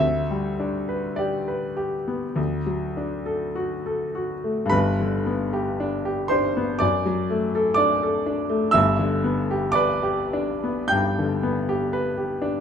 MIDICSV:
0, 0, Header, 1, 2, 480
1, 0, Start_track
1, 0, Key_signature, 1, "major"
1, 0, Tempo, 1178782
1, 7, Time_signature, 4, 2, 24, 8
1, 1927, Tempo, 1075269
1, 2407, Tempo, 1016949
1, 2887, Tempo, 974026
1, 4327, Tempo, 1147228
1, 4807, Tempo, 1034483
1, 5287, Tempo, 961538
1, 5624, End_track
2, 0, Start_track
2, 0, Title_t, "Grand piano"
2, 0, Program_c, 0, 0
2, 0, Control_c, 0, 64, 127
2, 0, Note_on_c, 0, 38, 59
2, 0, Note_on_c, 0, 76, 89
2, 15, Control_c, 0, 64, 0
2, 88, Control_c, 0, 64, 127
2, 124, Note_on_c, 0, 55, 46
2, 242, Note_on_c, 0, 62, 47
2, 321, Note_off_c, 0, 55, 0
2, 361, Note_on_c, 0, 71, 48
2, 439, Note_off_c, 0, 62, 0
2, 473, Note_on_c, 0, 74, 63
2, 481, Note_off_c, 0, 76, 0
2, 484, Note_on_c, 0, 67, 51
2, 557, Note_off_c, 0, 71, 0
2, 602, Note_on_c, 0, 71, 47
2, 677, Note_off_c, 0, 67, 0
2, 719, Note_on_c, 0, 67, 51
2, 796, Note_off_c, 0, 71, 0
2, 845, Note_on_c, 0, 59, 46
2, 914, Note_off_c, 0, 67, 0
2, 936, Note_off_c, 0, 38, 0
2, 960, Note_on_c, 0, 38, 57
2, 966, Note_off_c, 0, 59, 0
2, 974, Control_c, 0, 64, 0
2, 1051, Control_c, 0, 64, 127
2, 1085, Note_on_c, 0, 54, 42
2, 1210, Note_on_c, 0, 62, 45
2, 1282, Note_off_c, 0, 54, 0
2, 1327, Note_on_c, 0, 69, 49
2, 1405, Note_off_c, 0, 62, 0
2, 1445, Note_off_c, 0, 74, 0
2, 1447, Note_on_c, 0, 66, 53
2, 1523, Note_off_c, 0, 69, 0
2, 1572, Note_on_c, 0, 69, 47
2, 1644, Note_off_c, 0, 66, 0
2, 1690, Note_on_c, 0, 66, 47
2, 1765, Note_off_c, 0, 69, 0
2, 1809, Note_on_c, 0, 57, 43
2, 1878, Note_off_c, 0, 66, 0
2, 1896, Note_on_c, 0, 43, 70
2, 1906, Note_off_c, 0, 38, 0
2, 1912, Note_on_c, 0, 83, 96
2, 1915, Note_on_c, 0, 71, 71
2, 1922, Note_on_c, 0, 31, 68
2, 1923, Note_off_c, 0, 57, 0
2, 1933, Control_c, 0, 64, 0
2, 1999, Control_c, 0, 64, 127
2, 2048, Note_on_c, 0, 50, 54
2, 2163, Note_on_c, 0, 59, 57
2, 2240, Note_off_c, 0, 50, 0
2, 2284, Note_on_c, 0, 67, 57
2, 2356, Note_off_c, 0, 59, 0
2, 2404, Note_on_c, 0, 62, 60
2, 2477, Note_off_c, 0, 67, 0
2, 2523, Note_on_c, 0, 67, 57
2, 2600, Note_off_c, 0, 62, 0
2, 2624, Note_off_c, 0, 71, 0
2, 2631, Note_on_c, 0, 84, 89
2, 2636, Note_on_c, 0, 72, 67
2, 2641, Note_off_c, 0, 83, 0
2, 2645, Note_on_c, 0, 62, 61
2, 2718, Note_off_c, 0, 67, 0
2, 2766, Note_on_c, 0, 59, 60
2, 2837, Note_off_c, 0, 62, 0
2, 2849, Note_off_c, 0, 43, 0
2, 2862, Note_off_c, 0, 72, 0
2, 2864, Note_off_c, 0, 31, 0
2, 2869, Note_on_c, 0, 86, 78
2, 2875, Note_on_c, 0, 74, 72
2, 2876, Note_off_c, 0, 84, 0
2, 2882, Note_on_c, 0, 42, 61
2, 2884, Note_off_c, 0, 59, 0
2, 2894, Control_c, 0, 64, 0
2, 2983, Control_c, 0, 64, 127
2, 3001, Note_on_c, 0, 54, 54
2, 3121, Note_on_c, 0, 57, 63
2, 3194, Note_off_c, 0, 54, 0
2, 3245, Note_on_c, 0, 69, 63
2, 3312, Note_off_c, 0, 57, 0
2, 3333, Note_off_c, 0, 86, 0
2, 3336, Note_off_c, 0, 74, 0
2, 3340, Note_on_c, 0, 86, 95
2, 3347, Note_on_c, 0, 74, 66
2, 3357, Note_on_c, 0, 62, 60
2, 3433, Note_off_c, 0, 69, 0
2, 3481, Note_on_c, 0, 69, 49
2, 3548, Note_off_c, 0, 62, 0
2, 3596, Note_on_c, 0, 62, 57
2, 3669, Note_off_c, 0, 69, 0
2, 3710, Note_on_c, 0, 57, 58
2, 3786, Note_off_c, 0, 62, 0
2, 3808, Note_off_c, 0, 74, 0
2, 3813, Note_off_c, 0, 42, 0
2, 3818, Note_on_c, 0, 88, 98
2, 3823, Note_on_c, 0, 76, 75
2, 3824, Note_off_c, 0, 86, 0
2, 3830, Note_on_c, 0, 31, 70
2, 3831, Note_on_c, 0, 43, 70
2, 3832, Note_off_c, 0, 57, 0
2, 3842, Control_c, 0, 64, 0
2, 3923, Control_c, 0, 64, 127
2, 3954, Note_on_c, 0, 50, 53
2, 4078, Note_on_c, 0, 59, 51
2, 4149, Note_off_c, 0, 50, 0
2, 4210, Note_on_c, 0, 67, 57
2, 4276, Note_off_c, 0, 59, 0
2, 4301, Note_off_c, 0, 76, 0
2, 4313, Note_on_c, 0, 86, 101
2, 4318, Note_off_c, 0, 88, 0
2, 4318, Note_on_c, 0, 74, 75
2, 4330, Note_on_c, 0, 71, 70
2, 4398, Note_off_c, 0, 67, 0
2, 4446, Note_on_c, 0, 67, 60
2, 4514, Note_off_c, 0, 71, 0
2, 4573, Note_on_c, 0, 62, 61
2, 4641, Note_off_c, 0, 67, 0
2, 4699, Note_on_c, 0, 59, 54
2, 4764, Note_off_c, 0, 62, 0
2, 4786, Note_off_c, 0, 74, 0
2, 4787, Note_off_c, 0, 31, 0
2, 4788, Note_off_c, 0, 43, 0
2, 4800, Note_off_c, 0, 86, 0
2, 4800, Note_on_c, 0, 91, 94
2, 4806, Note_on_c, 0, 79, 69
2, 4816, Note_on_c, 0, 43, 62
2, 4890, Note_off_c, 0, 59, 0
2, 4943, Note_on_c, 0, 50, 53
2, 5057, Note_on_c, 0, 59, 59
2, 5130, Note_off_c, 0, 50, 0
2, 5176, Note_on_c, 0, 67, 63
2, 5242, Note_off_c, 0, 59, 0
2, 5288, Note_on_c, 0, 71, 62
2, 5362, Note_off_c, 0, 67, 0
2, 5410, Note_on_c, 0, 67, 48
2, 5480, Note_off_c, 0, 71, 0
2, 5531, Note_on_c, 0, 62, 59
2, 5600, Note_off_c, 0, 67, 0
2, 5624, Note_off_c, 0, 43, 0
2, 5624, Note_off_c, 0, 62, 0
2, 5624, Note_off_c, 0, 79, 0
2, 5624, Note_off_c, 0, 91, 0
2, 5624, End_track
0, 0, End_of_file